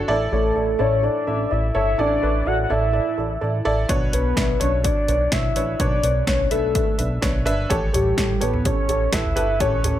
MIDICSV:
0, 0, Header, 1, 5, 480
1, 0, Start_track
1, 0, Tempo, 476190
1, 84, Time_signature, 4, 2, 24, 8
1, 10075, End_track
2, 0, Start_track
2, 0, Title_t, "Soft synth lead"
2, 0, Program_c, 0, 80
2, 330, Note_on_c, 0, 69, 82
2, 805, Note_on_c, 0, 73, 84
2, 821, Note_off_c, 0, 69, 0
2, 1050, Note_on_c, 0, 74, 100
2, 1065, Note_off_c, 0, 73, 0
2, 1531, Note_on_c, 0, 76, 86
2, 1546, Note_off_c, 0, 74, 0
2, 1761, Note_off_c, 0, 76, 0
2, 1767, Note_on_c, 0, 76, 92
2, 2013, Note_on_c, 0, 74, 106
2, 2028, Note_off_c, 0, 76, 0
2, 2486, Note_on_c, 0, 78, 100
2, 2501, Note_off_c, 0, 74, 0
2, 2651, Note_off_c, 0, 78, 0
2, 2657, Note_on_c, 0, 78, 62
2, 2735, Note_on_c, 0, 76, 86
2, 2750, Note_off_c, 0, 78, 0
2, 3690, Note_off_c, 0, 76, 0
2, 4175, Note_on_c, 0, 71, 87
2, 4616, Note_off_c, 0, 71, 0
2, 4648, Note_on_c, 0, 73, 80
2, 4755, Note_off_c, 0, 73, 0
2, 4889, Note_on_c, 0, 74, 106
2, 5367, Note_on_c, 0, 76, 95
2, 5382, Note_off_c, 0, 74, 0
2, 5842, Note_off_c, 0, 76, 0
2, 5848, Note_on_c, 0, 74, 104
2, 6293, Note_off_c, 0, 74, 0
2, 6319, Note_on_c, 0, 73, 81
2, 6544, Note_off_c, 0, 73, 0
2, 6564, Note_on_c, 0, 69, 68
2, 7010, Note_off_c, 0, 69, 0
2, 8020, Note_on_c, 0, 67, 97
2, 8488, Note_on_c, 0, 71, 86
2, 8503, Note_off_c, 0, 67, 0
2, 8728, Note_on_c, 0, 73, 100
2, 8743, Note_off_c, 0, 71, 0
2, 9205, Note_on_c, 0, 76, 99
2, 9220, Note_off_c, 0, 73, 0
2, 9679, Note_on_c, 0, 73, 107
2, 9694, Note_off_c, 0, 76, 0
2, 10075, Note_off_c, 0, 73, 0
2, 10075, End_track
3, 0, Start_track
3, 0, Title_t, "Upright piano"
3, 0, Program_c, 1, 0
3, 0, Control_c, 1, 64, 127
3, 0, Note_on_c, 1, 45, 54
3, 0, Note_on_c, 1, 62, 97
3, 0, Note_on_c, 1, 66, 85
3, 0, Note_on_c, 1, 69, 105
3, 0, Note_on_c, 1, 73, 86
3, 80, Note_on_c, 1, 64, 103
3, 82, Note_off_c, 1, 69, 0
3, 82, Note_on_c, 1, 69, 89
3, 83, Note_on_c, 1, 52, 62
3, 84, Note_on_c, 1, 74, 117
3, 86, Note_off_c, 1, 45, 0
3, 86, Note_on_c, 1, 45, 62
3, 99, Control_c, 1, 64, 0
3, 102, Note_off_c, 1, 73, 0
3, 105, Note_off_c, 1, 62, 0
3, 106, Note_off_c, 1, 66, 0
3, 288, Control_c, 1, 64, 127
3, 295, Note_off_c, 1, 64, 0
3, 296, Note_off_c, 1, 69, 0
3, 297, Note_off_c, 1, 74, 0
3, 325, Note_on_c, 1, 64, 63
3, 328, Note_on_c, 1, 69, 63
3, 330, Note_on_c, 1, 73, 71
3, 538, Note_off_c, 1, 64, 0
3, 539, Note_off_c, 1, 69, 0
3, 540, Note_off_c, 1, 73, 0
3, 559, Note_on_c, 1, 64, 65
3, 561, Note_on_c, 1, 69, 58
3, 563, Note_on_c, 1, 74, 65
3, 763, Note_off_c, 1, 52, 0
3, 765, Note_off_c, 1, 45, 0
3, 774, Note_off_c, 1, 64, 0
3, 776, Note_off_c, 1, 69, 0
3, 777, Note_off_c, 1, 74, 0
3, 794, Note_on_c, 1, 64, 80
3, 797, Note_on_c, 1, 69, 69
3, 798, Note_on_c, 1, 74, 84
3, 1012, Note_off_c, 1, 64, 0
3, 1014, Note_off_c, 1, 69, 0
3, 1014, Note_off_c, 1, 74, 0
3, 1037, Note_on_c, 1, 64, 61
3, 1040, Note_on_c, 1, 69, 64
3, 1041, Note_on_c, 1, 74, 67
3, 1253, Note_off_c, 1, 64, 0
3, 1255, Note_off_c, 1, 69, 0
3, 1255, Note_off_c, 1, 74, 0
3, 1281, Note_on_c, 1, 64, 66
3, 1281, Note_on_c, 1, 69, 56
3, 1282, Note_on_c, 1, 76, 67
3, 1495, Note_off_c, 1, 64, 0
3, 1496, Note_off_c, 1, 69, 0
3, 1496, Note_off_c, 1, 76, 0
3, 1519, Note_on_c, 1, 64, 58
3, 1520, Note_on_c, 1, 74, 67
3, 1521, Note_on_c, 1, 69, 50
3, 1735, Note_off_c, 1, 64, 0
3, 1735, Note_off_c, 1, 74, 0
3, 1736, Note_off_c, 1, 69, 0
3, 1759, Note_on_c, 1, 64, 85
3, 1761, Note_on_c, 1, 73, 82
3, 1762, Note_on_c, 1, 69, 81
3, 1975, Note_off_c, 1, 64, 0
3, 1975, Note_off_c, 1, 73, 0
3, 1976, Note_off_c, 1, 69, 0
3, 1998, Note_on_c, 1, 45, 52
3, 1998, Note_on_c, 1, 69, 77
3, 1999, Note_on_c, 1, 52, 57
3, 2001, Note_on_c, 1, 64, 74
3, 2004, Note_on_c, 1, 74, 94
3, 2214, Note_off_c, 1, 69, 0
3, 2216, Note_off_c, 1, 64, 0
3, 2217, Note_off_c, 1, 74, 0
3, 2241, Note_on_c, 1, 64, 64
3, 2244, Note_on_c, 1, 69, 59
3, 2246, Note_on_c, 1, 71, 74
3, 2455, Note_off_c, 1, 64, 0
3, 2457, Note_off_c, 1, 69, 0
3, 2458, Note_off_c, 1, 71, 0
3, 2478, Note_on_c, 1, 64, 66
3, 2478, Note_on_c, 1, 69, 53
3, 2479, Note_on_c, 1, 74, 66
3, 2681, Note_off_c, 1, 45, 0
3, 2681, Note_off_c, 1, 52, 0
3, 2694, Note_off_c, 1, 64, 0
3, 2694, Note_off_c, 1, 69, 0
3, 2695, Note_off_c, 1, 74, 0
3, 2720, Note_on_c, 1, 64, 83
3, 2724, Note_on_c, 1, 69, 72
3, 2725, Note_on_c, 1, 74, 82
3, 2935, Note_off_c, 1, 64, 0
3, 2937, Note_off_c, 1, 69, 0
3, 2937, Note_off_c, 1, 74, 0
3, 2956, Note_on_c, 1, 64, 64
3, 2956, Note_on_c, 1, 69, 56
3, 2957, Note_on_c, 1, 74, 75
3, 3173, Note_off_c, 1, 64, 0
3, 3173, Note_off_c, 1, 69, 0
3, 3174, Note_off_c, 1, 74, 0
3, 3202, Note_on_c, 1, 64, 64
3, 3204, Note_on_c, 1, 69, 57
3, 3204, Note_on_c, 1, 74, 62
3, 3416, Note_off_c, 1, 64, 0
3, 3417, Note_off_c, 1, 69, 0
3, 3417, Note_off_c, 1, 74, 0
3, 3439, Note_on_c, 1, 69, 66
3, 3441, Note_on_c, 1, 64, 67
3, 3443, Note_on_c, 1, 74, 69
3, 3655, Note_off_c, 1, 69, 0
3, 3656, Note_off_c, 1, 64, 0
3, 3657, Note_off_c, 1, 74, 0
3, 3678, Note_on_c, 1, 69, 89
3, 3681, Note_on_c, 1, 64, 96
3, 3682, Note_on_c, 1, 74, 114
3, 3895, Note_off_c, 1, 69, 0
3, 3896, Note_off_c, 1, 64, 0
3, 3896, Note_off_c, 1, 74, 0
3, 3917, Note_on_c, 1, 62, 90
3, 3919, Note_on_c, 1, 71, 87
3, 3920, Note_on_c, 1, 47, 69
3, 3920, Note_on_c, 1, 54, 65
3, 3923, Note_on_c, 1, 73, 105
3, 3938, Control_c, 1, 64, 0
3, 4129, Control_c, 1, 64, 127
3, 4134, Note_off_c, 1, 62, 0
3, 4135, Note_off_c, 1, 71, 0
3, 4137, Note_off_c, 1, 73, 0
3, 4163, Note_on_c, 1, 62, 66
3, 4166, Note_on_c, 1, 71, 57
3, 4168, Note_on_c, 1, 73, 72
3, 4377, Note_off_c, 1, 62, 0
3, 4378, Note_off_c, 1, 71, 0
3, 4379, Note_off_c, 1, 73, 0
3, 4395, Note_on_c, 1, 71, 51
3, 4396, Note_on_c, 1, 62, 61
3, 4400, Note_on_c, 1, 76, 66
3, 4602, Note_off_c, 1, 47, 0
3, 4602, Note_off_c, 1, 54, 0
3, 4613, Note_off_c, 1, 62, 0
3, 4613, Note_off_c, 1, 71, 0
3, 4615, Note_off_c, 1, 76, 0
3, 4634, Note_on_c, 1, 62, 79
3, 4637, Note_on_c, 1, 71, 67
3, 4637, Note_on_c, 1, 73, 78
3, 4852, Note_off_c, 1, 62, 0
3, 4854, Note_off_c, 1, 71, 0
3, 4854, Note_off_c, 1, 73, 0
3, 4874, Note_on_c, 1, 71, 63
3, 4875, Note_on_c, 1, 62, 60
3, 4876, Note_on_c, 1, 73, 66
3, 5092, Note_off_c, 1, 71, 0
3, 5093, Note_off_c, 1, 62, 0
3, 5093, Note_off_c, 1, 73, 0
3, 5120, Note_on_c, 1, 62, 66
3, 5124, Note_on_c, 1, 71, 59
3, 5127, Note_on_c, 1, 73, 69
3, 5335, Note_off_c, 1, 62, 0
3, 5337, Note_off_c, 1, 71, 0
3, 5339, Note_off_c, 1, 73, 0
3, 5356, Note_on_c, 1, 62, 56
3, 5359, Note_on_c, 1, 73, 68
3, 5362, Note_on_c, 1, 71, 53
3, 5573, Note_off_c, 1, 62, 0
3, 5575, Note_off_c, 1, 73, 0
3, 5576, Note_off_c, 1, 71, 0
3, 5602, Note_on_c, 1, 62, 79
3, 5604, Note_on_c, 1, 71, 76
3, 5607, Note_on_c, 1, 73, 86
3, 5816, Note_off_c, 1, 62, 0
3, 5817, Note_off_c, 1, 71, 0
3, 5819, Note_off_c, 1, 73, 0
3, 5845, Note_on_c, 1, 47, 55
3, 5845, Note_on_c, 1, 71, 74
3, 5847, Note_on_c, 1, 62, 81
3, 5848, Note_on_c, 1, 54, 52
3, 5849, Note_on_c, 1, 73, 95
3, 6057, Note_off_c, 1, 71, 0
3, 6059, Note_off_c, 1, 62, 0
3, 6059, Note_off_c, 1, 73, 0
3, 6082, Note_on_c, 1, 62, 66
3, 6086, Note_on_c, 1, 71, 57
3, 6087, Note_on_c, 1, 73, 71
3, 6296, Note_off_c, 1, 62, 0
3, 6298, Note_off_c, 1, 71, 0
3, 6298, Note_off_c, 1, 73, 0
3, 6323, Note_on_c, 1, 62, 59
3, 6324, Note_on_c, 1, 71, 58
3, 6326, Note_on_c, 1, 73, 65
3, 6524, Note_off_c, 1, 47, 0
3, 6526, Note_off_c, 1, 54, 0
3, 6536, Note_off_c, 1, 62, 0
3, 6537, Note_off_c, 1, 71, 0
3, 6538, Note_off_c, 1, 73, 0
3, 6559, Note_on_c, 1, 62, 72
3, 6562, Note_on_c, 1, 71, 75
3, 6565, Note_on_c, 1, 76, 85
3, 6774, Note_off_c, 1, 62, 0
3, 6776, Note_off_c, 1, 71, 0
3, 6778, Note_off_c, 1, 76, 0
3, 6805, Note_on_c, 1, 62, 70
3, 6808, Note_on_c, 1, 76, 72
3, 6809, Note_on_c, 1, 71, 61
3, 7017, Note_off_c, 1, 62, 0
3, 7019, Note_off_c, 1, 71, 0
3, 7019, Note_off_c, 1, 76, 0
3, 7040, Note_on_c, 1, 62, 62
3, 7040, Note_on_c, 1, 71, 59
3, 7041, Note_on_c, 1, 76, 72
3, 7254, Note_off_c, 1, 62, 0
3, 7255, Note_off_c, 1, 71, 0
3, 7255, Note_off_c, 1, 76, 0
3, 7272, Note_on_c, 1, 62, 73
3, 7277, Note_on_c, 1, 71, 74
3, 7279, Note_on_c, 1, 73, 85
3, 7491, Note_off_c, 1, 62, 0
3, 7493, Note_off_c, 1, 71, 0
3, 7494, Note_off_c, 1, 73, 0
3, 7515, Note_on_c, 1, 62, 102
3, 7517, Note_on_c, 1, 71, 100
3, 7519, Note_on_c, 1, 76, 116
3, 7732, Note_off_c, 1, 62, 0
3, 7733, Note_off_c, 1, 71, 0
3, 7734, Note_off_c, 1, 76, 0
3, 7757, Note_on_c, 1, 67, 92
3, 7758, Note_on_c, 1, 45, 69
3, 7759, Note_on_c, 1, 69, 99
3, 7760, Note_on_c, 1, 52, 74
3, 7761, Note_on_c, 1, 73, 107
3, 7775, Control_c, 1, 64, 0
3, 7950, Control_c, 1, 64, 127
3, 7973, Note_off_c, 1, 67, 0
3, 7974, Note_off_c, 1, 69, 0
3, 7975, Note_off_c, 1, 73, 0
3, 7995, Note_on_c, 1, 67, 62
3, 7997, Note_on_c, 1, 69, 60
3, 8000, Note_on_c, 1, 73, 79
3, 8212, Note_off_c, 1, 67, 0
3, 8213, Note_off_c, 1, 69, 0
3, 8214, Note_off_c, 1, 73, 0
3, 8235, Note_on_c, 1, 67, 67
3, 8237, Note_on_c, 1, 69, 60
3, 8240, Note_on_c, 1, 73, 71
3, 8439, Note_off_c, 1, 45, 0
3, 8441, Note_off_c, 1, 52, 0
3, 8452, Note_off_c, 1, 67, 0
3, 8453, Note_off_c, 1, 69, 0
3, 8454, Note_off_c, 1, 73, 0
3, 8473, Note_on_c, 1, 67, 87
3, 8473, Note_on_c, 1, 69, 71
3, 8476, Note_on_c, 1, 73, 82
3, 8690, Note_off_c, 1, 67, 0
3, 8690, Note_off_c, 1, 69, 0
3, 8692, Note_off_c, 1, 73, 0
3, 8715, Note_on_c, 1, 67, 66
3, 8717, Note_on_c, 1, 69, 60
3, 8721, Note_on_c, 1, 73, 76
3, 8931, Note_off_c, 1, 67, 0
3, 8932, Note_off_c, 1, 69, 0
3, 8934, Note_off_c, 1, 73, 0
3, 8959, Note_on_c, 1, 67, 60
3, 8960, Note_on_c, 1, 69, 64
3, 8960, Note_on_c, 1, 73, 72
3, 9173, Note_off_c, 1, 67, 0
3, 9174, Note_off_c, 1, 69, 0
3, 9174, Note_off_c, 1, 73, 0
3, 9193, Note_on_c, 1, 67, 65
3, 9196, Note_on_c, 1, 69, 60
3, 9199, Note_on_c, 1, 71, 69
3, 9410, Note_off_c, 1, 67, 0
3, 9412, Note_off_c, 1, 69, 0
3, 9413, Note_off_c, 1, 71, 0
3, 9433, Note_on_c, 1, 67, 79
3, 9434, Note_on_c, 1, 69, 77
3, 9434, Note_on_c, 1, 71, 90
3, 9650, Note_off_c, 1, 67, 0
3, 9650, Note_off_c, 1, 69, 0
3, 9650, Note_off_c, 1, 71, 0
3, 9677, Note_on_c, 1, 45, 61
3, 9677, Note_on_c, 1, 67, 84
3, 9679, Note_on_c, 1, 69, 83
3, 9680, Note_on_c, 1, 52, 59
3, 9683, Note_on_c, 1, 73, 93
3, 9892, Note_off_c, 1, 67, 0
3, 9893, Note_off_c, 1, 69, 0
3, 9895, Note_off_c, 1, 73, 0
3, 9917, Note_on_c, 1, 67, 62
3, 9919, Note_on_c, 1, 69, 65
3, 9922, Note_on_c, 1, 73, 70
3, 10075, Note_off_c, 1, 45, 0
3, 10075, Note_off_c, 1, 52, 0
3, 10075, Note_off_c, 1, 67, 0
3, 10075, Note_off_c, 1, 69, 0
3, 10075, Note_off_c, 1, 73, 0
3, 10075, End_track
4, 0, Start_track
4, 0, Title_t, "Analog synth bass"
4, 0, Program_c, 2, 38
4, 91, Note_on_c, 2, 33, 110
4, 285, Note_off_c, 2, 33, 0
4, 327, Note_on_c, 2, 33, 91
4, 523, Note_off_c, 2, 33, 0
4, 570, Note_on_c, 2, 33, 102
4, 765, Note_off_c, 2, 33, 0
4, 807, Note_on_c, 2, 33, 91
4, 1101, Note_off_c, 2, 33, 0
4, 1288, Note_on_c, 2, 33, 86
4, 1483, Note_off_c, 2, 33, 0
4, 1533, Note_on_c, 2, 33, 95
4, 1726, Note_off_c, 2, 33, 0
4, 1771, Note_on_c, 2, 31, 90
4, 1965, Note_off_c, 2, 31, 0
4, 2008, Note_on_c, 2, 33, 102
4, 2203, Note_off_c, 2, 33, 0
4, 2252, Note_on_c, 2, 33, 85
4, 2446, Note_off_c, 2, 33, 0
4, 2487, Note_on_c, 2, 33, 85
4, 2683, Note_off_c, 2, 33, 0
4, 2733, Note_on_c, 2, 33, 88
4, 3025, Note_off_c, 2, 33, 0
4, 3209, Note_on_c, 2, 33, 90
4, 3404, Note_off_c, 2, 33, 0
4, 3450, Note_on_c, 2, 33, 83
4, 3645, Note_off_c, 2, 33, 0
4, 3688, Note_on_c, 2, 33, 84
4, 3883, Note_off_c, 2, 33, 0
4, 3924, Note_on_c, 2, 35, 93
4, 4121, Note_off_c, 2, 35, 0
4, 4172, Note_on_c, 2, 35, 87
4, 4366, Note_off_c, 2, 35, 0
4, 4406, Note_on_c, 2, 35, 90
4, 4603, Note_off_c, 2, 35, 0
4, 4649, Note_on_c, 2, 35, 97
4, 4943, Note_off_c, 2, 35, 0
4, 5127, Note_on_c, 2, 35, 94
4, 5323, Note_off_c, 2, 35, 0
4, 5364, Note_on_c, 2, 35, 94
4, 5561, Note_off_c, 2, 35, 0
4, 5603, Note_on_c, 2, 33, 80
4, 5801, Note_off_c, 2, 33, 0
4, 5846, Note_on_c, 2, 35, 110
4, 6042, Note_off_c, 2, 35, 0
4, 6085, Note_on_c, 2, 35, 97
4, 6281, Note_off_c, 2, 35, 0
4, 6325, Note_on_c, 2, 35, 90
4, 6521, Note_off_c, 2, 35, 0
4, 6561, Note_on_c, 2, 35, 94
4, 6858, Note_off_c, 2, 35, 0
4, 7049, Note_on_c, 2, 35, 90
4, 7243, Note_off_c, 2, 35, 0
4, 7286, Note_on_c, 2, 35, 99
4, 7531, Note_on_c, 2, 31, 85
4, 7546, Note_off_c, 2, 35, 0
4, 7725, Note_off_c, 2, 31, 0
4, 7770, Note_on_c, 2, 33, 88
4, 7964, Note_off_c, 2, 33, 0
4, 8007, Note_on_c, 2, 33, 91
4, 8202, Note_off_c, 2, 33, 0
4, 8243, Note_on_c, 2, 33, 85
4, 8439, Note_off_c, 2, 33, 0
4, 8492, Note_on_c, 2, 33, 98
4, 8783, Note_off_c, 2, 33, 0
4, 8960, Note_on_c, 2, 33, 94
4, 9157, Note_off_c, 2, 33, 0
4, 9201, Note_on_c, 2, 33, 92
4, 9398, Note_off_c, 2, 33, 0
4, 9440, Note_on_c, 2, 31, 82
4, 9681, Note_on_c, 2, 33, 94
4, 9696, Note_off_c, 2, 31, 0
4, 9877, Note_off_c, 2, 33, 0
4, 9921, Note_on_c, 2, 33, 89
4, 10075, Note_off_c, 2, 33, 0
4, 10075, End_track
5, 0, Start_track
5, 0, Title_t, "Drums"
5, 3924, Note_on_c, 9, 36, 98
5, 3924, Note_on_c, 9, 42, 72
5, 4025, Note_off_c, 9, 36, 0
5, 4025, Note_off_c, 9, 42, 0
5, 4166, Note_on_c, 9, 42, 74
5, 4267, Note_off_c, 9, 42, 0
5, 4404, Note_on_c, 9, 36, 90
5, 4406, Note_on_c, 9, 38, 98
5, 4408, Note_on_c, 9, 42, 66
5, 4504, Note_off_c, 9, 36, 0
5, 4507, Note_off_c, 9, 38, 0
5, 4509, Note_off_c, 9, 42, 0
5, 4644, Note_on_c, 9, 42, 62
5, 4745, Note_off_c, 9, 42, 0
5, 4884, Note_on_c, 9, 42, 82
5, 4885, Note_on_c, 9, 36, 94
5, 4984, Note_off_c, 9, 42, 0
5, 4986, Note_off_c, 9, 36, 0
5, 5125, Note_on_c, 9, 42, 54
5, 5226, Note_off_c, 9, 42, 0
5, 5361, Note_on_c, 9, 38, 93
5, 5364, Note_on_c, 9, 36, 93
5, 5367, Note_on_c, 9, 42, 72
5, 5462, Note_off_c, 9, 38, 0
5, 5465, Note_off_c, 9, 36, 0
5, 5468, Note_off_c, 9, 42, 0
5, 5604, Note_on_c, 9, 42, 66
5, 5705, Note_off_c, 9, 42, 0
5, 5844, Note_on_c, 9, 36, 84
5, 5844, Note_on_c, 9, 42, 74
5, 5945, Note_off_c, 9, 36, 0
5, 5945, Note_off_c, 9, 42, 0
5, 6083, Note_on_c, 9, 42, 71
5, 6184, Note_off_c, 9, 42, 0
5, 6322, Note_on_c, 9, 36, 93
5, 6324, Note_on_c, 9, 38, 102
5, 6326, Note_on_c, 9, 42, 68
5, 6423, Note_off_c, 9, 36, 0
5, 6425, Note_off_c, 9, 38, 0
5, 6426, Note_off_c, 9, 42, 0
5, 6563, Note_on_c, 9, 42, 62
5, 6664, Note_off_c, 9, 42, 0
5, 6805, Note_on_c, 9, 42, 83
5, 6806, Note_on_c, 9, 36, 98
5, 6906, Note_off_c, 9, 42, 0
5, 6907, Note_off_c, 9, 36, 0
5, 7043, Note_on_c, 9, 42, 56
5, 7144, Note_off_c, 9, 42, 0
5, 7282, Note_on_c, 9, 38, 91
5, 7285, Note_on_c, 9, 36, 110
5, 7288, Note_on_c, 9, 42, 77
5, 7383, Note_off_c, 9, 38, 0
5, 7386, Note_off_c, 9, 36, 0
5, 7389, Note_off_c, 9, 42, 0
5, 7526, Note_on_c, 9, 42, 64
5, 7627, Note_off_c, 9, 42, 0
5, 7766, Note_on_c, 9, 36, 93
5, 7767, Note_on_c, 9, 42, 76
5, 7866, Note_off_c, 9, 36, 0
5, 7868, Note_off_c, 9, 42, 0
5, 8007, Note_on_c, 9, 42, 68
5, 8008, Note_on_c, 9, 43, 66
5, 8108, Note_off_c, 9, 42, 0
5, 8109, Note_off_c, 9, 43, 0
5, 8243, Note_on_c, 9, 36, 97
5, 8243, Note_on_c, 9, 38, 101
5, 8245, Note_on_c, 9, 42, 78
5, 8343, Note_off_c, 9, 36, 0
5, 8344, Note_off_c, 9, 38, 0
5, 8346, Note_off_c, 9, 42, 0
5, 8482, Note_on_c, 9, 42, 61
5, 8583, Note_off_c, 9, 42, 0
5, 8605, Note_on_c, 9, 43, 60
5, 8706, Note_off_c, 9, 43, 0
5, 8722, Note_on_c, 9, 42, 86
5, 8725, Note_on_c, 9, 36, 94
5, 8823, Note_off_c, 9, 42, 0
5, 8825, Note_off_c, 9, 36, 0
5, 8961, Note_on_c, 9, 42, 58
5, 9062, Note_off_c, 9, 42, 0
5, 9198, Note_on_c, 9, 38, 86
5, 9202, Note_on_c, 9, 36, 95
5, 9204, Note_on_c, 9, 42, 75
5, 9299, Note_off_c, 9, 38, 0
5, 9303, Note_off_c, 9, 36, 0
5, 9305, Note_off_c, 9, 42, 0
5, 9321, Note_on_c, 9, 43, 60
5, 9422, Note_off_c, 9, 43, 0
5, 9442, Note_on_c, 9, 42, 61
5, 9542, Note_off_c, 9, 42, 0
5, 9681, Note_on_c, 9, 36, 94
5, 9681, Note_on_c, 9, 42, 76
5, 9782, Note_off_c, 9, 36, 0
5, 9782, Note_off_c, 9, 42, 0
5, 9921, Note_on_c, 9, 42, 71
5, 9921, Note_on_c, 9, 43, 66
5, 10022, Note_off_c, 9, 42, 0
5, 10022, Note_off_c, 9, 43, 0
5, 10075, End_track
0, 0, End_of_file